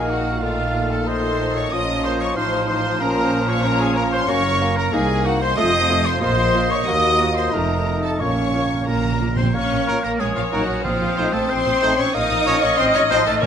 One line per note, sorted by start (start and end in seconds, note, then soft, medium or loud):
0.00 1.68 A#1 medium
0.00 1.68 A#2 medium
0.00 0.42 D#3 medium
0.00 0.39 A#3 medium
0.00 0.43 D#4 medium
0.00 1.72 D#4 medium
0.00 0.43 F#4 medium
0.00 0.12 G#4 medium
0.00 0.44 A#4 medium
0.00 1.08 F5 medium
0.09 0.42 F#4 medium
0.09 0.44 F#4 medium
0.09 0.42 F#5 medium
0.42 1.06 D#3 medium
0.42 1.70 A3 medium
0.42 1.70 F4 medium
0.42 0.90 F4 medium
0.42 0.91 F4 medium
0.42 1.06 A4 medium
0.42 0.91 F5 medium
0.42 0.92 F5 medium
0.90 1.09 A4 medium
0.90 1.08 A4 medium
0.90 1.07 A5 medium
0.90 1.08 A5 medium
1.07 1.75 D#3 medium
1.07 1.72 A4 medium
1.07 1.71 A4 medium
1.07 1.57 C5 medium
1.07 1.56 C5 medium
1.07 2.35 D#5 medium
1.07 1.55 C6 medium
1.56 1.74 C#5 medium
1.56 1.72 C#5 medium
1.56 1.73 C#6 medium
1.56 1.73 C#6 loud
1.72 2.36 A#1 medium
1.72 2.35 A#2 medium
1.72 4.24 F3 medium
1.72 2.36 F3 medium
1.72 2.36 C#4 medium
1.72 2.38 F4 medium
1.72 2.36 A#4 medium
1.72 2.04 D#5 medium
1.72 2.06 D#6 medium
1.72 2.05 D#6 loud
2.04 2.22 C5 medium
2.04 2.21 C5 medium
2.04 2.20 C6 medium
2.04 2.11 C6 loud
2.20 2.27 C#5 medium
2.20 2.36 C#5 medium
2.20 2.38 C#6 medium
2.20 2.37 C#6 loud
2.36 2.99 A1 medium
2.36 2.99 A2 medium
2.36 2.99 F3 medium
2.36 3.00 D#4 medium
2.36 3.01 D#4 medium
2.36 2.68 C5 medium
2.36 3.64 C5 medium
2.36 2.67 C5 medium
2.36 4.24 F5 medium
2.36 2.68 C6 medium
2.36 2.67 C6 loud
2.68 3.00 C5 medium
2.68 2.99 C6 medium
2.68 3.00 C6 loud
3.00 4.28 A#1 medium
3.00 4.28 A#2 medium
3.00 3.63 F3 medium
3.00 3.63 C#4 medium
3.00 4.90 C#4 medium
3.00 3.50 A#4 loud
3.00 3.47 A#4 medium
3.00 3.49 A#5 medium
3.00 3.48 A#5 loud
3.47 3.64 C#5 medium
3.47 3.66 C#5 medium
3.47 3.63 C#6 medium
3.47 3.65 C#6 loud
3.64 4.27 F3 medium
3.64 4.27 C#4 medium
3.64 3.82 A#4 medium
3.64 3.80 A#4 loud
3.64 4.28 C#5 medium
3.64 3.70 A#5 medium
3.64 3.80 A#5 loud
3.80 3.96 G#4 medium
3.80 3.95 G#4 medium
3.80 3.97 G#5 medium
3.80 3.96 G#5 loud
3.96 4.03 A#4 loud
3.96 4.12 A#4 medium
3.96 4.12 A#5 medium
4.12 4.19 C5 medium
4.12 4.28 C5 medium
4.12 4.31 C6 medium
4.12 4.28 C6 loud
4.28 4.86 F#1 medium
4.28 4.86 F#2 loud
4.28 4.36 A#3 medium
4.28 5.57 A#3 medium
4.28 4.43 A#3 medium
4.28 4.43 C#4 medium
4.28 4.36 F#4 medium
4.28 5.28 A#4 medium
4.28 4.78 C#5 loud
4.28 4.77 C#6 loud
4.28 4.56 C#6 loud
4.60 4.69 A#3 medium
4.60 4.76 A#3 medium
4.60 4.76 C#4 medium
4.60 4.68 F#4 medium
4.77 4.95 A#4 medium
4.77 4.85 A#4 medium
4.77 4.93 A#5 medium
4.77 4.94 A#5 loud
4.92 5.50 C2 medium
4.92 5.00 A#3 medium
4.92 5.08 A#3 medium
4.92 5.00 D#4 medium
4.92 5.55 D#4 medium
4.92 5.08 D#4 medium
4.92 5.27 G#4 medium
4.92 5.26 G#4 loud
4.92 5.25 G#5 loud
4.92 5.25 G#5 medium
5.24 5.32 A#3 medium
5.24 5.40 A#3 medium
5.24 5.32 D#4 medium
5.24 5.40 D#4 medium
5.24 5.41 F#4 medium
5.24 5.42 F#4 medium
5.24 5.41 F#5 loud
5.24 5.41 F#5 medium
5.41 5.57 C5 medium
5.41 5.58 C5 medium
5.41 5.60 C6 medium
5.41 5.58 C6 loud
5.56 6.15 F1 medium
5.56 6.14 F2 loud
5.56 5.65 A3 medium
5.56 6.20 A3 medium
5.56 5.72 A3 medium
5.56 6.69 F4 medium
5.56 5.65 F4 medium
5.56 5.72 F4 medium
5.56 6.18 C5 medium
5.56 6.07 D#5 loud
5.56 6.05 D#5 loud
5.56 6.05 D#6 loud
5.56 6.06 D#6 loud
5.89 5.97 A3 medium
5.89 6.04 A3 medium
5.89 5.97 F4 medium
5.89 6.04 F4 medium
6.06 6.21 C5 medium
6.06 6.21 C6 loud
6.06 6.13 C6 medium
6.20 6.79 A#1 loud
6.20 6.79 A#2 medium
6.20 6.29 A#3 medium
6.20 7.52 A#3 medium
6.20 6.37 A#3 medium
6.20 6.29 F4 medium
6.20 6.37 F4 medium
6.20 6.72 C5 loud
6.20 6.70 C5 loud
6.20 8.22 D#5 loud
6.20 6.69 C6 loud
6.54 6.62 A#3 medium
6.54 6.70 A#3 medium
6.54 6.62 F4 medium
6.54 6.69 F4 medium
6.70 6.86 C#5 medium
6.70 6.87 C#5 medium
6.70 6.76 C#6 medium
6.70 6.87 C#6 loud
6.85 7.45 D#2 medium
6.85 6.94 A#3 medium
6.85 7.49 A#3 medium
6.85 7.51 F#4 medium
6.85 6.94 F#4 medium
6.85 7.21 F#4 medium
6.85 7.22 D#5 loud
6.85 7.36 D#5 loud
6.85 7.36 D#6 loud
7.19 7.27 A#3 medium
7.19 7.54 F4 medium
7.19 7.27 F#4 medium
7.34 7.43 C5 medium
7.34 7.54 C5 medium
7.34 7.54 C6 medium
7.34 7.53 C6 medium
7.52 8.13 F1 medium
7.52 8.12 F2 medium
7.52 8.22 A3 medium
7.52 8.20 A3 medium
7.52 7.61 A3 medium
7.52 8.20 D#4 medium
7.52 7.61 F4 medium
7.52 8.05 A#4 medium
7.52 8.03 A#4 medium
7.52 8.03 A#5 medium
7.86 7.94 A3 medium
7.86 7.95 F4 medium
8.03 8.10 A4 medium
8.03 8.20 A4 medium
8.03 8.21 A5 medium
8.03 8.20 A5 medium
8.19 8.80 A#1 medium
8.19 8.28 A#2 soft
8.19 8.80 A#2 medium
8.19 8.28 A#3 medium
8.19 9.21 A#3 medium
8.19 9.22 A#3 medium
8.19 9.20 C#4 medium
8.19 8.28 F4 medium
8.19 8.86 C#5 medium
8.19 8.87 C#6 medium
8.19 8.86 C#6 loud
8.29 8.36 A#2 soft
8.37 8.42 A#2 soft
8.43 8.50 A#2 soft
8.51 8.57 A#2 soft
8.51 8.62 A#3 medium
8.51 8.61 F4 medium
8.59 8.65 A#2 soft
8.66 8.73 A#2 soft
8.74 8.80 A#2 medium
8.81 8.88 A#2 medium
8.87 9.47 A#1 medium
8.87 9.46 A#2 medium
8.87 8.96 A#2 medium
8.87 8.95 A#3 medium
8.87 9.34 A#3 medium
8.87 8.95 F4 medium
8.87 9.39 A#4 medium
8.87 9.34 A#4 medium
8.87 9.34 A#5 loud
8.97 9.03 A#2 medium
9.04 9.11 A#2 medium
9.12 9.19 A#2 medium
9.20 9.27 A#2 medium
9.20 9.29 A#3 medium
9.20 9.29 F4 medium
9.28 9.35 A#2 medium
9.36 9.42 A#2 loud
9.36 9.54 C4 medium
9.36 9.54 C5 medium
9.36 9.56 C5 medium
9.36 9.54 C6 medium
9.43 9.50 A#2 medium
9.53 9.61 A#1 medium
9.53 10.16 A#3 medium
9.53 10.03 C#4 medium
9.53 10.16 A#4 medium
9.53 10.05 C#5 loud
9.53 10.03 C#5 medium
9.53 10.02 C#6 loud
9.53 10.22 F6 medium
9.71 9.78 A#1 medium
9.87 9.94 A#1 medium
9.87 9.98 A#3 medium
9.87 9.99 F4 medium
9.87 9.99 A#4 medium
10.04 10.11 A#1 medium
10.04 10.20 A#3 medium
10.04 10.22 A#4 medium
10.04 10.10 A#4 medium
10.04 10.10 A#5 medium
10.19 10.27 A#1 loud
10.19 10.36 G#3 medium
10.19 10.86 C#4 medium
10.19 10.36 G#4 medium
10.19 10.35 G#4 medium
10.19 10.86 A#4 medium
10.19 10.81 C#5 medium
10.19 10.26 G#5 loud
10.19 10.84 D#6 medium
10.35 10.43 A#1 medium
10.35 10.43 F3 medium
10.35 10.43 F4 medium
10.35 10.52 F4 medium
10.35 10.43 F5 medium
10.52 10.59 A#1 medium
10.52 10.84 F#3 medium
10.52 10.64 A#3 medium
10.52 10.64 D#4 medium
10.52 10.83 F#4 medium
10.52 10.85 F#4 medium
10.52 10.64 A#4 medium
10.52 10.84 F#5 medium
10.69 10.75 A#1 medium
10.84 10.92 A#1 medium
10.84 11.78 A#2 loud
10.84 11.32 F3 medium
10.84 12.14 C4 medium
10.84 11.34 F4 medium
10.84 12.14 C5 medium
10.84 11.32 F5 loud
10.84 12.12 D#6 medium
11.02 11.08 A#1 medium
11.17 11.24 A#1 medium
11.17 11.29 A3 medium
11.17 11.29 D#4 medium
11.17 11.28 C5 medium
11.33 11.40 A#1 medium
11.33 11.50 A3 medium
11.33 11.51 A4 medium
11.33 11.49 A4 medium
11.33 11.50 A5 loud
11.49 11.57 A#1 loud
11.49 11.97 C4 medium
11.49 11.98 C5 loud
11.49 11.99 C5 loud
11.49 11.98 C6 loud
11.66 11.73 A#1 medium
11.82 11.89 A#1 medium
11.82 11.94 A3 medium
11.82 11.93 D#4 medium
11.82 11.93 C5 medium
11.99 12.05 A#1 medium
11.99 12.15 C#4 loud
11.99 12.14 C#5 medium
11.99 12.16 C#5 medium
11.99 12.15 C#6 loud
12.14 12.21 A#1 medium
12.14 12.80 A#3 medium
12.14 12.62 D#4 loud
12.14 12.64 D#5 loud
12.14 13.44 D#5 medium
12.14 13.40 D#5 loud
12.14 12.63 D#5 loud
12.14 12.62 D#6 loud
12.14 13.40 F6 medium
12.31 12.37 A#1 medium
12.46 12.53 A#1 medium
12.46 12.57 F3 medium
12.46 12.58 C#4 medium
12.46 12.57 C#5 loud
12.63 12.69 A#1 medium
12.63 12.78 C#4 loud
12.63 12.78 C#5 medium
12.63 12.78 C#5 loud
12.63 12.78 C#6 loud
12.78 12.85 A1 loud
12.78 12.94 C4 loud
12.78 13.42 D#4 medium
12.78 12.85 C5 loud
12.78 12.97 C5 loud
12.78 12.84 C6 loud
12.94 13.01 A1 medium
12.94 13.01 C#4 loud
12.94 13.00 C#5 loud
12.94 13.10 C#5 loud
12.94 13.01 C#6 loud
13.10 13.17 A1 medium
13.10 13.22 F3 medium
13.10 13.17 C4 medium
13.10 13.22 D#4 medium
13.10 13.17 C5 loud
13.10 13.22 C5 medium
13.10 13.26 C6 loud
13.26 13.33 A1 medium
13.26 13.42 A3 loud
13.26 13.32 A4 medium
13.26 13.45 A4 loud
13.26 13.34 A5 loud
13.42 13.46 A#1 loud
13.42 13.46 A#2 loud
13.42 13.46 A#3 loud
13.42 13.46 C#4 loud
13.42 13.46 A#4 loud
13.42 13.46 C#5 medium
13.42 13.46 A#5 loud
13.42 13.46 F6 medium